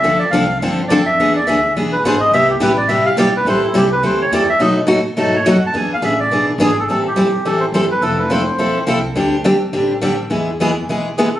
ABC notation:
X:1
M:4/4
L:1/8
Q:"Swing" 1/4=210
K:Am
V:1 name="Melodica"
e d f2 z2 d e- | e d e2 z B c ^d | e G B d e f d B | c E G B c ^c d e |
^d z3 a ^c ^f a | ^g f e d2 z ^G A | A G3 A c c B | A B c4 z2 |
z8 | z6 ^G A |]
V:2 name="Steel-string acoustic guitar"
[D,F,CDA] z [D,F,CDA] z [D,F,CDA] z [D,F,CDA] z | [E,B,D^G] z [E,B,DG] z [E,B,DG] z [E,B,DG] z | [C,G,B,EG] z [C,G,B,EG] z [C,G,B,EG] z [C,G,B,EG] z | [E,G,CEA] z [E,G,CEA] z [E,G,CEA] z [E,G,CEA] z |
[B,,^F,A,^D^F] z [B,,F,A,DF] z [B,,F,A,DF] z [B,,F,A,DF] z | [E,B,D^G] z [E,B,DG] z [E,B,DG] z [E,B,DG] z | [E,G,CEA] z [E,G,CEA] z [E,G,CEA] z [E,G,CEA] z | [F,CEA] z [F,CEA] z [F,CEA] z [F,CEA] z |
[D,G,CDG] z [D,G,CDG] z [D,G,CDG] z [D,G,CDG] z | [E,^G,B,E^G] z [E,G,B,EG] z [E,G,B,EG] z [E,G,B,EG] z |]
V:3 name="Upright bass" clef=bass
D,, z C,,2 G,,2 F,,2 | E,,2 D,,2 B,,,2 ^G,,,2 | C,,2 A,,,2 G,,,2 B,,,2 | A,,, z C,,2 D,,2 E,, z |
B,,2 A,, z ^G,,2 ^F,,2 | E,,2 A,,,2 B,,,2 ^G,,,2 | A,,,2 B,,,2 A,,,2 G,,,2 | F,,,4 B,,,2 C,,2 |
D,,4 A,,,4 | E,,4 B,,,4 |]